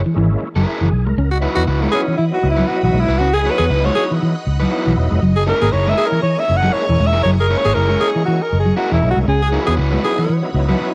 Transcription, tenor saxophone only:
0, 0, Header, 1, 2, 480
1, 0, Start_track
1, 0, Tempo, 506757
1, 1108, Time_signature, 4, 2, 24, 8
1, 10363, End_track
2, 0, Start_track
2, 0, Title_t, "Tenor saxophone"
2, 0, Program_c, 0, 66
2, 1239, Note_on_c, 0, 66, 85
2, 1307, Note_off_c, 0, 66, 0
2, 1473, Note_on_c, 0, 66, 99
2, 1543, Note_off_c, 0, 66, 0
2, 1820, Note_on_c, 0, 68, 112
2, 1908, Note_off_c, 0, 68, 0
2, 3160, Note_on_c, 0, 68, 90
2, 3228, Note_off_c, 0, 68, 0
2, 3392, Note_on_c, 0, 68, 107
2, 3463, Note_off_c, 0, 68, 0
2, 3744, Note_on_c, 0, 68, 114
2, 3831, Note_off_c, 0, 68, 0
2, 5077, Note_on_c, 0, 68, 96
2, 5147, Note_off_c, 0, 68, 0
2, 5322, Note_on_c, 0, 68, 103
2, 5390, Note_off_c, 0, 68, 0
2, 5662, Note_on_c, 0, 68, 106
2, 5750, Note_off_c, 0, 68, 0
2, 7008, Note_on_c, 0, 68, 82
2, 7075, Note_off_c, 0, 68, 0
2, 7243, Note_on_c, 0, 68, 104
2, 7311, Note_off_c, 0, 68, 0
2, 7586, Note_on_c, 0, 68, 101
2, 7673, Note_off_c, 0, 68, 0
2, 8928, Note_on_c, 0, 68, 85
2, 8994, Note_off_c, 0, 68, 0
2, 9157, Note_on_c, 0, 68, 110
2, 9227, Note_off_c, 0, 68, 0
2, 9512, Note_on_c, 0, 68, 105
2, 9830, Note_off_c, 0, 68, 0
2, 10363, End_track
0, 0, End_of_file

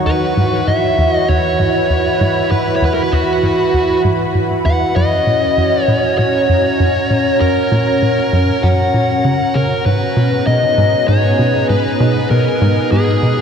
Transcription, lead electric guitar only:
0, 0, Header, 1, 2, 480
1, 0, Start_track
1, 0, Tempo, 612245
1, 49, Time_signature, 4, 2, 24, 8
1, 10517, End_track
2, 0, Start_track
2, 0, Title_t, "Lead electric guitar"
2, 0, Program_c, 0, 29
2, 50, Note_on_c, 0, 71, 96
2, 530, Note_on_c, 0, 76, 99
2, 543, Note_off_c, 0, 71, 0
2, 883, Note_off_c, 0, 76, 0
2, 883, Note_on_c, 0, 75, 99
2, 1009, Note_on_c, 0, 73, 93
2, 1024, Note_off_c, 0, 75, 0
2, 1966, Note_off_c, 0, 73, 0
2, 1969, Note_on_c, 0, 71, 88
2, 2161, Note_off_c, 0, 71, 0
2, 2164, Note_on_c, 0, 73, 79
2, 2233, Note_off_c, 0, 73, 0
2, 2236, Note_on_c, 0, 71, 77
2, 2303, Note_off_c, 0, 71, 0
2, 2306, Note_on_c, 0, 70, 76
2, 2376, Note_off_c, 0, 70, 0
2, 2380, Note_on_c, 0, 71, 78
2, 2450, Note_off_c, 0, 71, 0
2, 2451, Note_on_c, 0, 66, 73
2, 3138, Note_off_c, 0, 66, 0
2, 3650, Note_on_c, 0, 78, 97
2, 3886, Note_off_c, 0, 78, 0
2, 3889, Note_on_c, 0, 75, 100
2, 4563, Note_off_c, 0, 75, 0
2, 4563, Note_on_c, 0, 73, 100
2, 4846, Note_off_c, 0, 73, 0
2, 4846, Note_on_c, 0, 73, 95
2, 5803, Note_off_c, 0, 73, 0
2, 5806, Note_on_c, 0, 70, 92
2, 6766, Note_on_c, 0, 78, 95
2, 6796, Note_off_c, 0, 70, 0
2, 7487, Note_on_c, 0, 70, 82
2, 7509, Note_off_c, 0, 78, 0
2, 7726, Note_off_c, 0, 70, 0
2, 7729, Note_on_c, 0, 71, 91
2, 8204, Note_off_c, 0, 71, 0
2, 8207, Note_on_c, 0, 75, 90
2, 8683, Note_off_c, 0, 75, 0
2, 8686, Note_on_c, 0, 73, 87
2, 9136, Note_off_c, 0, 73, 0
2, 9167, Note_on_c, 0, 71, 85
2, 9643, Note_off_c, 0, 71, 0
2, 9646, Note_on_c, 0, 70, 89
2, 10125, Note_off_c, 0, 70, 0
2, 10128, Note_on_c, 0, 68, 73
2, 10517, Note_off_c, 0, 68, 0
2, 10517, End_track
0, 0, End_of_file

